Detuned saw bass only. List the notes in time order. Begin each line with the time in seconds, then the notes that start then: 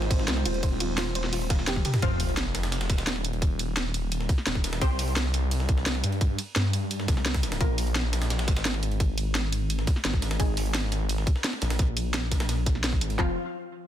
0.11 G#1
0.28 C2
0.46 D#1
2.02 F1
2.90 D#1
4.47 D#1
4.81 C2
5.69 C2
5.86 C2
6.04 G2
6.56 G2
7.08 C2
7.61 A#1
8.48 G#1
10.05 G#1
10.40 G#1
11.62 A#1
13.01 G#1
13.19 F1